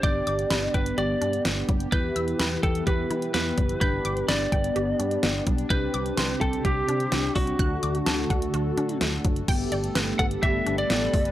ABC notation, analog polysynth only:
X:1
M:4/4
L:1/8
Q:1/4=127
K:G
V:1 name="Analog polysynth"
[B,DG]8 | [B,EG]8 | [B,DG]8 | [CDG]8 |
[A,DF]8 | [A,B,G]8 |]